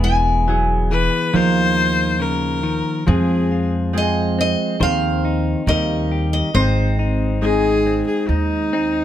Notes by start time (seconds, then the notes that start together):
Already playing: E1 E3 G#3 B3 G#4
0.04 E4 G#5
0.48 F#3 B3 E4 G#4
0.91 E3 B4
1.16 F#5
1.33 D#2 D#3 F3 A#3 D#4 F4 A#4 C5
1.77 F4
2.20 C#3 A#4
2.63 D#3
3.07 F2 F3 G#3 C4 F4 G#4
3.52 F4
3.93 G#3 C4 F4 G#4
3.98 D#5
4.39 C4 D#5
4.80 D#2 D#3 C4 C5 F5
5.25 D#4
5.67 D#2 D#3 G3 A#3 D#4 G4 A#4 D#5
6.12 G4
6.33 D#5
6.54 G#1 G#3 C4 D#4 C5
6.99 D#4
7.41 G#3 C4 D#4 G#4
7.86 C4
8.07 G#4
8.28 D#2 D#4
8.73 C4 D#4